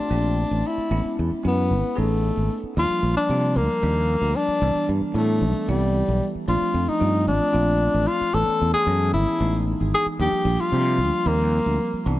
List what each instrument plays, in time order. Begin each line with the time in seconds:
Already playing: tenor saxophone D4
0.10 fretless electric bass A#1, tine electric piano A3 C4 D4 G4
0.51 fretless electric bass A1
0.67 tenor saxophone E4
0.78 muted fretless electric bass stroke
0.90 fretless electric bass A1, tine electric piano G#3 B3 C#4 E4
1.05 muted fretless electric bass stroke
1.19 fretless electric bass E2
1.32 muted fretless electric bass stroke
1.43 fretless electric bass F#2, tine electric piano G#3 B3 C#4 E4, tenor saxophone B3
1.71 fretless electric bass G#1
1.96 fretless electric bass A1, tenor saxophone A3, tine electric piano B3 C#4 D#4 G#4
2.37 fretless electric bass G#1
2.63 muted fretless electric bass stroke
2.77 fretless electric bass D#2, tine electric piano F3 G3 A#3 D4, tenor saxophone F4
2.90 muted fretless electric bass stroke
3.03 fretless electric bass A#1
3.17 tenor saxophone D4
3.29 fretless electric bass C3, tine electric piano F3 G3 A#3 F4
3.56 fretless electric bass D2, tenor saxophone A#3
3.82 fretless electric bass D#2, tine electric piano F3 G3 A#3 D4
4.22 fretless electric bass D2
4.36 tenor saxophone D4
4.48 muted fretless electric bass stroke
4.62 fretless electric bass C2, tine electric piano E3 G3 B3 D4
4.89 fretless electric bass G2
5.02 muted fretless electric bass stroke
5.14 fretless electric bass A2, tine electric piano E3 G3 B3 D4, tenor saxophone A3
5.41 fretless electric bass B1
5.68 fretless electric bass C2, tine electric piano E3 G3 B3 E4, tenor saxophone G3
6.09 fretless electric bass B1
6.35 muted fretless electric bass stroke
6.48 fretless electric bass A#1, tine electric piano F3 A3 C4 D4, tenor saxophone F4
6.74 fretless electric bass F2
6.88 tenor saxophone D#4, muted fretless electric bass stroke
6.99 fretless electric bass G2, tine electric piano F3 A3 C4 F4
7.27 fretless electric bass A1, tenor saxophone D4
7.52 fretless electric bass A#1, tine electric piano F3 A3 C4 F4
7.94 fretless electric bass A1
8.07 tenor saxophone F4
8.21 muted fretless electric bass stroke
8.34 fretless electric bass A1, tine electric piano E3 A3 B3 C#4, tenor saxophone A4
8.48 muted fretless electric bass stroke
8.62 fretless electric bass E2
8.74 tenor saxophone G#4, muted fretless electric bass stroke
8.86 fretless electric bass F#2, tine electric piano E3 G#3 B3 C#4
9.13 fretless electric bass G#1, tenor saxophone E4
9.40 fretless electric bass A1, tine electric piano E3 G#3 B3 D#4
9.81 fretless electric bass G#1
9.94 tenor saxophone G#4
10.06 muted fretless electric bass stroke
10.19 fretless electric bass D#2, tine electric piano F3 G3 A#3 D4, tenor saxophone G4
10.33 muted fretless electric bass stroke
10.45 fretless electric bass A#1
10.58 tenor saxophone F4, muted fretless electric bass stroke
10.72 fretless electric bass C3, tine electric piano F3 G3 A#3 D4
10.98 fretless electric bass D2
11.26 fretless electric bass D#2, tine electric piano F3 G3 A#3 C4, tenor saxophone A#3
11.66 fretless electric bass D2
11.93 muted fretless electric bass stroke
12.06 fretless electric bass C2, tine electric piano E3 G3 B3 D4